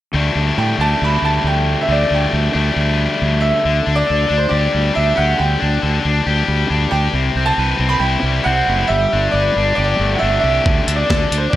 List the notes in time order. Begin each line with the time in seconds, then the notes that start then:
0.13 D2 D3 G3 A3 D4
0.35 D2
0.58 A2 G5
0.78 D2 G3 A3 D4 A5
0.83 D3
1.02 D2 B5
1.22 D2 A5
1.44 D2 G5
1.82 E5
1.88 D2 D3 G3 A3 D4
1.92 D5
2.11 D2 G5
2.33 D2
2.53 D2 D3 G3 A3 D4
2.76 D2
3.22 D2
3.41 E5
3.65 D2 D3
3.86 D2 D4
3.95 D5
4.07 D2 A4
4.28 D2 D4
4.38 C5
4.49 D2 G4 D5
4.73 D2 G3
4.94 D2 D4 E5
5.15 D2 G4 F#5
5.37 D2 D3 G5
5.60 D2 D4
5.82 D2 A4
6.04 D2 D4
6.26 D2 G4
6.48 D2 G3
6.70 D2 D4
6.91 D2 G4 G5
7.13 C2 C3
7.35 C2 C4
7.46 A5
7.58 C2 B4
7.79 C2 C4
7.89 B5
8.00 C2 E4 G5
8.23 C2 G3
8.44 C2 C4 F#5
8.68 F#1 E4
8.87 G1 G3 E5
9.13 G1 D4
9.31 G1 B4 D5
9.56 G1 D4
9.75 G1 G4 D5
9.99 G1 A3
10.15 F#5
10.19 G1 D4 E5
10.40 C2 G4 E5
10.66 D2 D3, kick
10.87 D2 D4, closed hi-hat
10.96 D5
11.09 D2 A4, kick, snare
11.31 D2 D4, closed hi-hat
11.38 C5
11.50 D2 D5